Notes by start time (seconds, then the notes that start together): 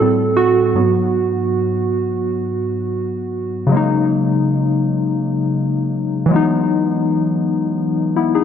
Already playing: A4
0.01 A2 G3 C4
0.37 F#4
0.75 G#2 F#3 B3
3.67 C#3 F#3
3.72 G#3 A#3
3.77 D#4
6.26 E3 F#3
6.31 G#3 B3
6.36 D#4
8.16 B3 E4
8.35 D#4 G#4